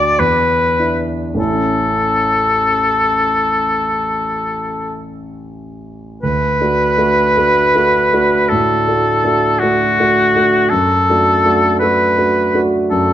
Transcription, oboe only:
Already playing: D5
0.19 B4
1.39 A4
6.22 B4
8.48 A4
9.59 F#4
10.69 A4
11.79 B4
12.90 A4

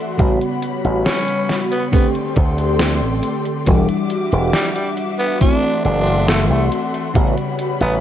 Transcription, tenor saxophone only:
1.05 C#4
1.72 B3
1.92 B3
4.54 G3
4.76 G3
5.19 B3
5.41 D4
5.85 D4
6.29 A3
6.51 A3
7.82 B3

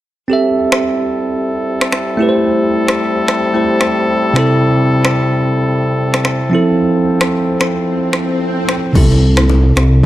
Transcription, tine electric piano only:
0.28 C4 G4 A4
0.33 E5
2.17 A3 E4 G4
2.22 B4
2.29 C5
3.54 A3 E4 G4 C5
4.34 C3 C4 E4
4.39 A4
6.50 F3 C4 E4
6.55 A4
8.93 C3 C4 E4
8.98 A4

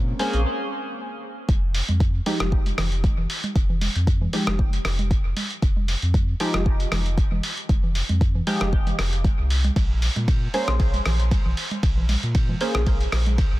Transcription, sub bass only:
Already playing: A#2
0.33 A#1
1.49 F1
1.89 F2
2.40 F1
2.78 F1
3.18 F1
3.56 F1
3.95 F2
4.47 F1
4.85 F1
5.25 F1
5.62 F1
6.02 F2
6.54 F1
6.92 F1
7.32 F1
7.69 F1
8.09 F2
8.61 F1
8.99 F1
9.39 C2
9.76 A#1
10.16 A#2
10.68 A#1
11.06 A#1
11.45 A#1
11.83 A#1
12.23 A#2
12.75 A#1
13.12 A#1
13.52 A#1

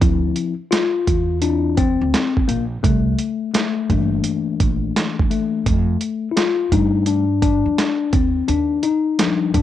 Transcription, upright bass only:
0.02 D2
1.07 E2
2.01 D2
2.49 A#1
2.84 C2
3.90 G1
4.60 A#1
5.66 F2
6.72 G2
7.66 F2
8.13 D#2
8.49 D#2
9.54 G2

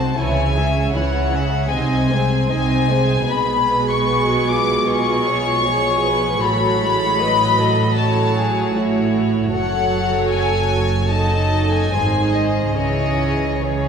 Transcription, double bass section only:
0.17 C#2
0.93 C#2
1.72 C2
2.50 C2
3.29 B1
6.42 A1
9.53 F#1
11.91 G#1
12.76 C#2

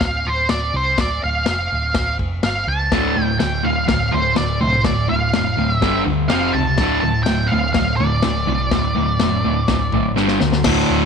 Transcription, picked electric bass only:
0.01 D1
0.25 D1
0.50 D1
0.73 C2
0.98 D1
1.23 D1
1.48 F1
1.72 D1
1.95 D1
2.19 F1
2.43 G1
2.67 C#2
2.92 D1
3.16 D1
3.41 D1
3.64 D1
3.88 D1
4.14 D1
4.38 D1
4.63 C2
4.85 D1
5.10 D1
5.34 F1
5.58 D1
5.82 G1
6.07 D2
6.30 F1
6.54 C#2
6.78 D1
7.03 D1
7.27 D1
7.52 D1
7.75 D1
8.00 D1
8.24 D1
8.47 C2
8.72 D1
8.96 D1
9.19 F1
9.44 D1
9.68 D1
9.92 A1
10.16 G1
10.41 D2
10.64 D1
10.90 D1

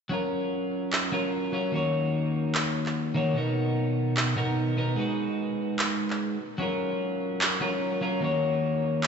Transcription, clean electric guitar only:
0.09 F#3 C#4 F4
0.13 A#4
1.12 F#3 C#4 F4 A#4
1.52 F#3 C#4 F4 A#4
1.72 D#3 A#3 F#4 C#5
3.15 D#3 A#3 F#4 C#5
3.34 B2 B3 D#4
3.38 A#4
4.36 B2 B3 D#4 A#4
4.77 B2 B3 D#4 A#4
4.96 G#3 D#4 F#4 B4
6.58 F#3 C#4 F4
6.62 A#4
7.61 F#3 C#4 F4 A#4
8.01 F#3 C#4 F4 A#4
8.20 D#3 A#3 F#4 C#5

